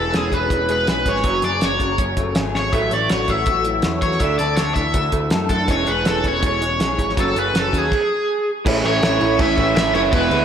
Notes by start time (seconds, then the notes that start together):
Already playing: E1 E3 G#3 G#4 A4
0.13 E1 E3 G#3 C#4 G#4, snare, closed hi-hat
0.31 E1 E3 G#3 B4, kick, closed hi-hat
0.50 E1 E3 G#3 C#4, kick, closed hi-hat
0.69 E3 G#3 B4, closed hi-hat
0.87 B1 E3 G#3 G#4 B4, snare, closed hi-hat
1.05 G#1 E3 G#3 C#4 C#5, kick, closed hi-hat
1.16 snare
1.24 F#1 F#2 C#3 F#3, kick, closed hi-hat
1.42 F#1 F#2 C#3 G#4 D5, snare, closed hi-hat
1.61 F#1 F#2 C#3 C#4 C#5, snare, closed hi-hat
1.80 F#1 F#2 C#3 F#3, kick, closed hi-hat
1.98 F#1 F#2 C#3 C#4, kick, closed hi-hat
2.17 F#1 F#2 C#3 A3, kick, closed hi-hat
2.35 G#1 F#2 C#3 G#4, snare, closed hi-hat
2.54 F#2 C#3 C#4 C#5, snare
2.73 A1 A2 F#3 A3 E5, kick, closed hi-hat
2.91 A1 A2 F#3 C#5 D5, closed hi-hat
3.10 A1 A2 F#3 F#4 C#5, snare, closed hi-hat
3.28 A1 A2 F#3 A3 E5, kick, closed hi-hat
3.46 A1 A2 F#3 F#4, kick, closed hi-hat
3.65 A2 F#3 E4, closed hi-hat
3.82 E2 A2 F#3 C#5, snare, closed hi-hat
4.02 E2 A2 F#3 F#4 C#5, kick, closed hi-hat
4.12 snare
4.20 D2 D3 A3 D4 E5, kick, closed hi-hat
4.38 D2 D3 A3 A4 D5, snare, closed hi-hat
4.57 D2 D3 A3 D4 C#5, snare, closed hi-hat
4.75 D2 D3 E3 A3 E5, kick, closed hi-hat
4.94 D2 D3 A3 D4, kick, closed hi-hat
5.12 D2 D3 A3, kick, closed hi-hat
5.30 F#2 D3 A3 A4, snare, closed hi-hat
5.49 D3 A3 D4 A4, kick, closed hi-hat
5.68 E1 E3 G#3 C#4 C#5, kick, closed hi-hat
5.86 E1 E3 G#3 G#4 B4, closed hi-hat
6.05 E1 E3 G#3 C#4 A4, snare, closed hi-hat
6.24 E1 E3 G#3 C#5, kick, closed hi-hat
6.42 E1 E3 G#3 C#4, kick, closed hi-hat
6.47 C#5
6.61 E3 G#3, closed hi-hat
6.79 B1 E3 G#3 G#4, snare, closed hi-hat
6.98 G#1 E3 G#3 C#4, kick, closed hi-hat
7.10 snare
7.16 F#1 F#2 C#3 F#3 A4, kick, closed hi-hat
7.35 F#1 F#2 C#3 G#4, closed hi-hat
7.39 B4
7.53 F#1 F#2 C#3 C#4, snare, closed hi-hat
7.59 A4
7.72 D#2 F#2 C#3 F#3, kick, closed hi-hat
7.78 G#4
7.92 kick, crash
8.65 A1 A2 E3 A3 C#4 E4, kick, crash
8.82 A1 A2 E3 A3 C#4 E4 C#5, crash
9.01 A1 A2 E3 A3 C#4 E4, snare, crash
9.19 A1 A2 E3 A3 C#4 E4, crash
9.39 A1 A2 E3 A3 C#4 E4 E5, kick, crash
9.57 A1 A2 E3 A3 C#4 E4, kick, crash
9.75 A1 A2 E3 A3 C#4 E4 E5, snare, crash
9.94 F#1 A2 E3 A3 C#4 E4 C#5, crash
10.12 E1 E2 B2 E3 G#3 B3 E4 B4, kick, crash
10.30 D2 E2 B2 E3 G#3 B3 E4, crash